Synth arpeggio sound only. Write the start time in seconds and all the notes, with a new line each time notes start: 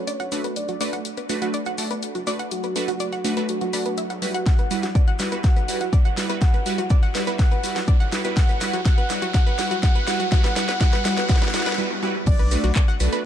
0.07 D5
0.20 F#5
0.44 B4
0.69 F#4
0.81 D5
0.93 F#5
1.17 B4
1.42 F#4
1.54 D5
1.66 F#5
1.91 B4
2.15 F#4
2.27 D5
2.39 F#5
2.64 B4
2.88 F#4
3.00 D5
3.13 F#5
3.37 B4
3.61 F#4
3.73 B5
3.86 B4
3.98 E5
4.10 F#5
4.34 F#5
4.59 B4
4.83 F#4
4.95 D5
5.08 F#5
5.32 B4
5.56 B4
5.81 F#4
5.93 D5
6.05 F#5
6.30 B4
6.54 B4
6.78 F#4
6.90 D5
7.03 F#5
7.27 B4
7.52 B4
7.76 F#4
7.88 D5
8.00 F#5
8.25 B4
8.49 B4
8.73 F#4
8.98 B4
9.22 F#4
9.47 B4
9.71 F#4
9.95 B4
10.20 F#4
10.44 B4
10.69 B4
10.93 B4
11.17 B4
11.42 B4
11.66 B4
12.39 B4
12.64 F#4
12.76 D5
12.88 F#5
13.13 B4